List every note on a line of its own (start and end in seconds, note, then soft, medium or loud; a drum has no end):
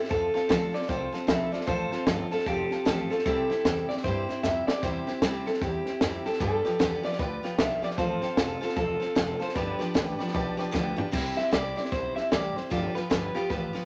0.00 0.10 E4 medium
0.00 snare soft
0.09 0.35 F2 medium
0.09 0.34 F3 medium
0.09 0.35 C4 medium
0.09 0.34 F4 medium
0.09 0.76 A4 loud
0.09 0.33 A4 medium
0.09 0.25 C5 medium
0.09 0.25 F5 medium
0.09 0.25 A5 loud
0.09 kick loud
0.09 snare soft
0.34 0.48 C4 soft
0.34 0.49 F4 medium
0.34 0.49 A4 medium
0.34 0.43 C5 medium
0.34 0.44 F5 medium
0.34 0.44 A5 medium
0.34 muted upright bass stroke medium
0.34 snare soft
0.48 0.73 D2 loud
0.48 0.74 F3 medium
0.48 0.73 C4 medium
0.48 0.72 F4 medium
0.48 0.71 A4 medium
0.48 0.64 C5 medium
0.48 0.64 F5 medium
0.48 0.64 A5 medium
0.48 kick medium
0.48 snare loud
0.48 hi-hat pedal medium
0.72 0.87 C4 soft
0.72 0.88 F4 medium
0.72 0.88 A4 medium
0.72 0.83 C5 medium
0.72 0.89 D5 medium
0.72 0.83 F5 medium
0.72 0.83 C6 medium
0.72 muted upright bass stroke medium
0.72 snare soft
0.82 snare soft
0.88 1.12 C2 medium
0.88 1.13 F3 medium
0.88 1.13 C4 medium
0.88 1.13 F4 medium
0.88 1.11 A4 medium
0.88 1.03 C5 medium
0.88 1.28 C5 loud
0.88 1.04 F5 medium
0.88 1.04 G5 loud
0.88 kick loud
0.88 snare soft
1.12 1.27 C4 medium
1.12 1.27 F4 medium
1.12 1.28 A4 medium
1.12 1.22 C5 medium
1.12 1.22 F5 medium
1.12 1.23 A5 medium
1.12 snare soft
1.27 1.52 B1 loud
1.27 1.52 F3 medium
1.27 1.53 C4 medium
1.27 1.52 F4 medium
1.27 1.51 A4 medium
1.27 1.43 C5 medium
1.27 1.52 E5 loud
1.27 1.43 F5 medium
1.27 1.43 B5 medium
1.27 kick medium
1.27 snare loud
1.27 hi-hat pedal medium
1.52 1.66 C4 medium
1.52 1.67 F4 medium
1.52 1.67 A4 medium
1.52 1.61 C5 medium
1.52 1.67 D5 medium
1.52 1.62 F5 medium
1.52 1.62 A5 medium
1.52 snare soft
1.61 snare soft
1.67 1.91 A1 medium
1.67 1.92 F3 medium
1.67 1.92 C4 medium
1.67 1.93 F4 medium
1.67 1.91 A4 medium
1.67 1.82 C5 medium
1.67 2.04 C5 loud
1.67 1.82 F5 medium
1.67 1.82 A5 loud
1.67 kick loud
1.67 snare soft
1.91 2.06 C4 soft
1.91 2.07 F4 medium
1.91 2.07 A4 medium
1.91 2.01 C5 medium
1.91 2.01 F5 medium
1.91 2.01 A5 medium
1.91 muted upright bass stroke medium
1.91 snare soft
2.06 2.31 G1 loud
2.06 2.31 F3 medium
2.06 2.32 C4 medium
2.06 2.32 F4 medium
2.06 2.30 A4 medium
2.06 2.22 C5 medium
2.06 2.22 F5 medium
2.06 2.22 A5 medium
2.06 kick medium
2.06 snare loud
2.06 hi-hat pedal medium
2.31 2.46 C4 medium
2.31 2.46 F4 medium
2.31 2.46 A4 medium
2.31 2.47 A4 medium
2.31 2.40 C5 medium
2.31 2.41 F5 medium
2.31 2.41 A5 medium
2.31 muted upright bass stroke medium
2.31 snare soft
2.39 snare soft
2.46 2.70 F1 medium
2.46 2.71 F3 medium
2.46 2.71 C4 medium
2.46 2.71 F4 medium
2.46 3.07 G4 medium
2.46 2.69 A4 medium
2.46 2.61 C5 medium
2.46 2.61 F5 medium
2.46 2.61 A5 medium
2.46 kick loud
2.46 snare soft
2.70 2.85 C4 soft
2.70 2.86 F4 medium
2.70 2.86 A4 medium
2.70 2.80 C5 medium
2.70 2.80 F5 medium
2.70 2.81 A5 medium
2.70 snare soft
2.85 3.10 A1 loud
2.85 3.10 F3 medium
2.85 3.10 C4 medium
2.85 3.10 F4 medium
2.85 3.09 A4 medium
2.85 3.00 C5 medium
2.85 3.01 F5 medium
2.85 3.01 A5 medium
2.85 kick medium
2.85 snare loud
2.85 hi-hat pedal medium
3.10 3.25 C4 medium
3.10 3.26 F4 medium
3.10 3.25 A4 medium
3.10 3.24 A4 medium
3.10 3.19 C5 medium
3.10 3.20 F5 medium
3.10 3.20 C6 medium
3.10 muted upright bass stroke medium
3.10 snare soft
3.19 snare soft
3.25 3.49 C2 medium
3.25 3.50 C3 medium
3.25 3.50 G3 medium
3.25 3.50 C4 medium
3.25 3.50 E4 medium
3.25 3.48 G4 medium
3.25 3.85 A4 loud
3.25 3.40 C5 medium
3.25 3.40 E5 medium
3.25 3.40 G5 loud
3.25 kick loud
3.25 snare soft
3.49 3.65 C4 soft
3.49 3.65 E4 medium
3.49 3.65 G4 medium
3.49 3.58 C5 medium
3.49 3.58 E5 medium
3.49 3.59 G5 loud
3.49 snare soft
3.64 3.88 E2 medium
3.64 3.89 C3 medium
3.64 3.89 G3 medium
3.64 3.90 C4 medium
3.64 3.89 E4 medium
3.64 3.88 G4 medium
3.64 3.79 C5 medium
3.64 3.79 E5 medium
3.64 3.80 G5 medium
3.64 kick medium
3.64 snare loud
3.64 hi-hat pedal medium
3.89 4.06 C4 medium
3.89 4.05 E4 soft
3.89 4.04 G4 medium
3.89 3.98 C5 medium
3.89 3.94 D5 loud
3.89 3.98 E5 medium
3.89 3.98 G5 medium
3.89 muted upright bass stroke medium
3.89 snare soft
3.97 snare soft
4.03 4.28 G2 medium
4.03 4.29 G3 medium
4.03 4.30 C4 medium
4.03 4.18 C5 medium
4.03 4.41 C5 loud
4.03 4.18 E5 medium
4.03 4.19 G5 loud
4.03 kick loud
4.03 snare soft
4.07 4.29 E4 medium
4.07 4.28 G4 medium
4.28 4.44 C4 soft
4.28 4.44 E4 medium
4.28 4.44 G4 medium
4.28 4.37 C5 medium
4.28 4.37 E5 medium
4.28 4.38 G5 medium
4.28 snare soft
4.43 4.67 F2 loud
4.43 4.68 C3 medium
4.43 4.68 G3 medium
4.43 4.68 C4 medium
4.43 4.68 E4 medium
4.43 4.67 G4 medium
4.43 4.58 C5 medium
4.43 4.58 E5 medium
4.43 4.66 E5 medium
4.43 4.58 G5 medium
4.43 kick medium
4.43 snare medium
4.43 hi-hat pedal medium
4.67 4.82 C4 soft
4.67 4.83 E4 soft
4.67 4.83 G4 medium
4.67 4.76 C5 medium
4.67 4.83 D5 medium
4.67 4.76 E5 medium
4.67 4.77 G5 medium
4.67 muted upright bass stroke medium
4.67 snare medium
4.82 5.07 E2 medium
4.82 5.07 C3 medium
4.82 5.07 G3 medium
4.82 5.08 C4 medium
4.82 5.07 E4 medium
4.82 5.06 G4 medium
4.82 4.97 C5 medium
4.82 5.22 C5 loud
4.82 4.97 E5 loud
4.82 4.97 G5 loud
4.82 kick loud
4.82 snare soft
5.06 5.21 C4 medium
5.06 5.22 E4 medium
5.06 5.22 G4 medium
5.06 5.15 C5 medium
5.06 5.16 E5 medium
5.06 5.16 G5 medium
5.06 snare soft
5.22 5.45 D2 loud
5.22 5.46 C3 medium
5.22 5.47 G3 medium
5.22 5.47 C4 medium
5.22 5.46 E4 medium
5.22 5.44 G4 medium
5.22 5.37 C5 medium
5.22 5.37 E5 medium
5.22 5.37 G5 medium
5.22 kick medium
5.22 snare loud
5.22 hi-hat pedal medium
5.46 5.61 C4 medium
5.46 5.62 E4 medium
5.46 5.61 G4 medium
5.46 5.62 A4 medium
5.46 5.55 C5 medium
5.46 5.56 E5 medium
5.46 5.56 G5 medium
5.46 snare soft
5.54 snare soft
5.61 5.85 E2 medium
5.61 5.86 G3 medium
5.61 5.86 C4 medium
5.61 5.87 E4 medium
5.61 6.26 G4 medium
5.61 5.85 G4 medium
5.61 5.76 C5 medium
5.61 5.76 E5 medium
5.61 5.76 G5 medium
5.61 kick loud
5.61 snare soft
5.86 6.02 C4 soft
5.86 6.02 E4 soft
5.86 6.01 G4 medium
5.86 5.95 C5 medium
5.86 5.95 E5 medium
5.86 5.95 G5 medium
5.86 snare soft
6.01 6.25 F2 loud
6.01 6.26 C3 medium
6.01 6.26 G3 medium
6.01 6.26 C4 medium
6.01 6.26 E4 medium
6.01 6.25 G4 medium
6.01 6.16 C5 medium
6.01 6.16 E5 medium
6.01 6.16 G5 medium
6.01 kick medium
6.01 snare loud
6.01 hi-hat pedal medium
6.25 6.41 C4 soft
6.25 6.41 E4 medium
6.25 6.41 G4 medium
6.25 6.40 A4 medium
6.25 6.34 C5 medium
6.25 6.35 E5 medium
6.25 6.35 G5 medium
6.25 muted upright bass stroke medium
6.25 snare soft
6.33 snare soft
6.39 6.65 G2 medium
6.39 6.64 G2 medium
6.39 6.65 D3 medium
6.39 6.65 F3 medium
6.39 6.65 B3 medium
6.39 6.65 F4 medium
6.39 6.63 G4 medium
6.39 7.04 A4 medium
6.39 6.55 B4 loud
6.39 6.55 D5 medium
6.39 6.55 G5 medium
6.39 kick loud
6.39 snare soft
6.65 6.79 F3 soft
6.65 6.79 B3 medium
6.65 6.79 F4 medium
6.65 6.80 G4 medium
6.65 6.74 B4 medium
6.65 6.74 D5 medium
6.65 6.74 G5 loud
6.65 muted upright bass stroke medium
6.65 snare soft
6.79 7.04 E2 loud
6.79 7.04 G2 medium
6.79 7.04 D3 medium
6.79 7.04 F3 medium
6.79 7.04 B3 medium
6.79 7.03 F4 medium
6.79 7.02 G4 loud
6.79 6.94 B4 medium
6.79 6.95 G5 medium
6.79 kick loud
6.79 snare loud
6.79 hi-hat pedal medium
7.03 7.17 F3 soft
7.03 7.19 B3 medium
7.03 7.19 F4 medium
7.03 7.19 G4 medium
7.03 7.13 B4 medium
7.03 7.13 D5 medium
7.03 7.18 D5 medium
7.03 7.14 E5 medium
7.03 muted upright bass stroke medium
7.03 snare soft
7.12 snare soft
7.19 7.43 D2 medium
7.19 7.43 F3 medium
7.19 7.43 B3 medium
7.19 7.43 F4 medium
7.19 7.42 G4 medium
7.19 7.34 B4 loud
7.19 7.56 B4 loud
7.19 7.34 D5 medium
7.19 7.34 G5 medium
7.19 kick loud
7.19 snare soft
7.43 7.58 F3 soft
7.43 7.58 B3 soft
7.43 7.59 F4 medium
7.43 7.58 G4 medium
7.43 7.52 B4 medium
7.43 7.53 D5 medium
7.43 7.53 G5 medium
7.43 muted upright bass stroke medium
7.43 snare soft
7.57 7.82 B1 loud
7.57 7.83 G2 medium
7.57 7.83 D3 medium
7.57 7.83 F3 medium
7.57 7.83 B3 medium
7.57 7.82 F4 loud
7.57 7.81 G4 medium
7.57 7.73 B4 medium
7.57 7.73 D5 medium
7.57 7.84 E5 medium
7.57 7.73 G5 medium
7.57 kick medium
7.57 snare loud
7.57 hi-hat pedal medium
7.82 7.97 F3 soft
7.82 7.98 B3 medium
7.82 7.98 F4 medium
7.82 7.98 G4 medium
7.82 7.91 B4 medium
7.82 7.92 D5 medium
7.82 7.89 D5 medium
7.82 7.92 G5 medium
7.82 muted upright bass stroke medium
7.82 snare soft
7.91 snare soft
7.97 8.22 A1 medium
7.97 8.22 F3 medium
7.97 8.23 C4 medium
7.97 8.22 F4 medium
7.97 8.21 A4 medium
7.97 8.12 C5 loud
7.97 8.58 C5 medium
7.97 8.12 F5 medium
7.97 8.13 A5 loud
7.97 kick loud
7.97 snare soft
8.21 8.37 C4 soft
8.21 8.37 F4 medium
8.21 8.37 A4 medium
8.21 8.31 C5 medium
8.21 8.31 F5 medium
8.21 8.31 G5 medium
8.21 muted upright bass stroke medium
8.21 snare soft
8.36 8.61 F1 medium
8.36 8.62 F3 medium
8.36 8.62 C4 medium
8.36 8.61 F4 medium
8.36 8.60 A4 loud
8.36 8.51 C5 medium
8.36 8.52 F5 medium
8.36 8.52 A5 medium
8.36 kick medium
8.36 snare loud
8.36 hi-hat pedal medium
8.61 8.75 C4 medium
8.61 8.76 F4 medium
8.61 8.76 A4 medium
8.61 8.77 A4 medium
8.61 8.70 C5 medium
8.61 8.71 F5 medium
8.61 8.71 A5 medium
8.61 muted upright bass stroke medium
8.61 snare soft
8.69 snare soft
8.75 9.00 E1 loud
8.75 9.01 F3 medium
8.75 9.01 C4 medium
8.75 9.00 F4 medium
8.75 8.99 A4 medium
8.75 9.42 A4 loud
8.75 8.91 C5 medium
8.75 8.91 F5 medium
8.75 8.91 A5 loud
8.75 kick loud
8.75 snare soft
9.00 9.15 C4 soft
9.00 9.15 F4 medium
9.00 9.15 A4 medium
9.00 9.10 C5 medium
9.00 9.10 F5 medium
9.00 9.10 A5 medium
9.00 muted upright bass stroke medium
9.00 snare soft
9.15 9.40 F1 loud
9.15 9.40 F3 medium
9.15 9.41 C4 medium
9.15 9.40 F4 medium
9.15 9.38 A4 medium
9.15 9.30 C5 medium
9.15 9.31 F5 medium
9.15 9.31 A5 medium
9.15 kick medium
9.15 snare loud
9.15 hi-hat pedal medium
9.39 9.56 C4 soft
9.39 9.56 F4 medium
9.39 9.55 A4 medium
9.39 9.49 C5 medium
9.39 9.55 C5 medium
9.39 9.49 F5 medium
9.39 9.49 A5 medium
9.39 muted upright bass stroke medium
9.39 snare soft
9.49 snare soft
9.54 9.79 G1 medium
9.54 9.80 G2 medium
9.54 9.80 D3 medium
9.54 9.80 F3 medium
9.54 9.80 B3 medium
9.54 9.79 D4 medium
9.54 9.78 G4 medium
9.54 9.70 B4 loud
9.54 10.70 B4 medium
9.54 9.70 D5 medium
9.54 9.70 G5 loud
9.54 kick loud
9.54 snare soft
9.79 9.94 F3 medium
9.79 9.94 B3 medium
9.79 9.94 D4 medium
9.79 9.94 G4 medium
9.79 9.89 B4 medium
9.79 9.89 D5 medium
9.79 9.89 G5 loud
9.79 muted upright bass stroke medium
9.79 snare soft
9.94 10.19 A1 loud
9.94 10.19 G2 medium
9.94 10.19 D3 medium
9.94 10.20 F3 medium
9.94 10.20 B3 medium
9.94 10.19 D4 medium
9.94 10.17 G4 medium
9.94 10.09 B4 medium
9.94 10.10 D5 medium
9.94 10.10 G5 medium
9.94 kick medium
9.94 snare loud
9.94 hi-hat pedal medium
10.18 10.31 F3 medium
10.18 10.32 B3 medium
10.18 10.33 D4 medium
10.18 10.34 G4 medium
10.18 10.28 B4 medium
10.18 10.28 D5 medium
10.18 10.28 G5 medium
10.18 10.33 B5 medium
10.18 muted upright bass stroke medium
10.18 snare soft
10.28 snare soft
10.32 10.58 B1 medium
10.32 10.58 F3 medium
10.32 10.57 B3 medium
10.32 10.57 D4 medium
10.32 10.56 G4 medium
10.32 10.49 B4 loud
10.32 10.49 D5 loud
10.32 10.49 G5 loud
10.32 10.71 A5 medium
10.32 kick loud
10.32 snare soft
10.57 10.71 F3 medium
10.57 10.71 B3 medium
10.57 10.72 D4 medium
10.57 10.72 G4 medium
10.57 10.68 B4 loud
10.57 10.68 D5 medium
10.57 10.68 G5 loud
10.57 snare soft
10.71 10.97 D2 loud
10.71 10.97 G2 medium
10.71 10.98 D3 medium
10.71 10.98 F3 medium
10.71 10.97 B3 loud
10.71 10.97 D4 medium
10.71 10.95 G4 loud
10.71 10.88 B4 medium
10.71 10.88 D5 medium
10.71 10.89 G5 loud
10.71 kick medium
10.71 snare medium
10.71 hi-hat pedal medium
10.96 11.12 F3 soft
10.96 11.12 B3 medium
10.96 11.13 D4 medium
10.96 11.12 G4 medium
10.96 11.07 B4 medium
10.96 11.07 D5 medium
10.96 11.12 F5 medium
10.96 11.07 G5 loud
10.96 floor tom medium
11.11 11.30 C2 medium
11.11 11.37 C3 medium
11.11 11.37 G3 medium
11.11 11.37 C4 medium
11.11 11.36 E4 loud
11.11 11.35 G4 medium
11.11 kick loud
11.11 snare soft
11.11 crash loud
11.36 11.51 C4 soft
11.36 11.52 E4 soft
11.36 11.52 G4 medium
11.36 11.51 E5 loud
11.36 muted upright bass stroke medium
11.36 snare soft
11.51 11.74 C2 medium
11.51 11.77 C3 medium
11.51 11.77 G3 medium
11.51 11.77 C4 medium
11.51 11.76 E4 medium
11.51 11.75 G4 loud
11.51 11.76 D5 loud
11.51 kick medium
11.51 snare loud
11.51 hi-hat pedal medium
11.76 11.91 C4 soft
11.76 11.92 E4 medium
11.76 11.92 G4 medium
11.76 11.82 D5 loud
11.76 snare soft
11.85 snare soft
11.92 12.13 B1 medium
11.92 12.17 G3 medium
11.92 12.17 C4 medium
11.92 12.16 E4 medium
11.92 12.15 G4 medium
11.92 12.16 C5 loud
11.92 kick loud
11.92 snare soft
12.16 12.31 C4 soft
12.16 12.31 E4 medium
12.16 12.32 G4 medium
12.16 12.30 E5 medium
12.16 muted upright bass stroke medium
12.16 snare soft
12.32 12.53 A1 medium
12.32 12.56 C3 medium
12.32 12.56 G3 medium
12.32 12.57 C4 medium
12.32 12.56 E4 medium
12.32 12.55 G4 medium
12.32 12.56 D5 medium
12.32 kick medium
12.32 snare loud
12.32 hi-hat pedal medium
12.56 12.71 C4 soft
12.56 12.72 E4 soft
12.56 12.71 G4 medium
12.56 12.70 C5 medium
12.56 muted upright bass stroke medium
12.56 snare soft
12.70 12.89 G1 medium
12.70 12.95 G2 medium
12.70 12.96 D3 medium
12.70 12.96 F3 medium
12.70 12.95 B3 medium
12.70 12.94 F4 medium
12.70 12.94 G4 medium
12.70 12.95 D5 loud
12.70 kick loud
12.70 snare soft
12.95 13.10 F3 medium
12.95 13.10 B3 medium
12.95 13.10 F4 medium
12.95 13.10 G4 medium
12.95 13.09 B4 medium
12.95 muted upright bass stroke medium
12.95 snare soft
13.10 13.32 G1 medium
13.10 13.35 G2 medium
13.10 13.35 D3 medium
13.10 13.35 F3 medium
13.10 13.35 B3 medium
13.10 13.34 F4 medium
13.10 13.33 G4 medium
13.10 13.36 B4 medium
13.10 kick medium
13.10 snare loud
13.10 hi-hat pedal medium
13.34 13.48 F3 soft
13.34 13.49 B3 medium
13.34 13.50 F4 medium
13.34 13.50 G4 medium
13.34 13.49 G4 medium
13.34 muted upright bass stroke medium
13.34 snare soft
13.49 13.71 A1 medium
13.49 13.74 F3 medium
13.49 13.74 B3 medium
13.49 13.73 F4 medium
13.49 13.72 G4 medium
13.49 13.85 B4 medium
13.49 kick loud
13.49 snare soft
13.73 13.85 F3 soft
13.73 13.85 B3 soft
13.73 13.85 F4 medium
13.73 13.85 G4 medium
13.73 muted upright bass stroke medium
13.73 snare soft